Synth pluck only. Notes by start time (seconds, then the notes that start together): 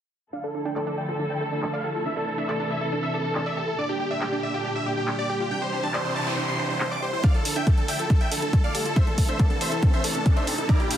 0.33 D4
0.44 D4
0.55 D4
0.65 D4
0.76 D5
0.87 D4
0.98 D5
1.08 F4
1.19 D4
1.30 D4
1.41 D4
1.52 D4
1.63 D4
1.73 D5
1.84 G4
1.95 F4
2.06 D4
2.16 D4
2.27 D4
2.38 D4
2.49 D5
2.60 D4
2.70 D5
2.81 E4
2.92 D4
3.03 D4
3.14 D4
3.24 D4
3.35 D4
3.46 D5
3.57 G4
3.68 E4
3.78 D4
3.89 D4
4.00 D4
4.11 D4
4.21 D5
4.32 D4
4.43 D5
4.54 F4
4.65 D4
4.75 D4
4.86 D4
4.97 D4
5.08 D4
5.19 D5
5.29 G4
5.40 F4
5.51 D4
5.62 D4
5.73 D4
5.83 D4
5.94 D5
6.05 D4
6.16 D5
6.27 E4
6.37 D4
6.48 D4
6.59 D4
6.70 D4
6.81 D4
6.91 D5
7.02 G4
7.13 E4
7.24 D4
7.34 D4
7.45 D4
7.56 D4
7.67 D5
7.78 D4
7.88 D5
7.99 F4
8.10 D4
8.21 D4
8.32 D4
8.42 D4
8.53 D4
8.64 D5
8.75 G4
8.85 F4
8.96 D4
9.07 D4
9.18 D4
9.29 D4
9.39 D5
9.50 D4
9.61 D5
9.72 E4
9.83 D4
9.93 D4
10.04 D4
10.15 D4
10.26 D4
10.37 D5
10.47 G4
10.58 E4
10.69 D4
10.80 D4
10.90 D4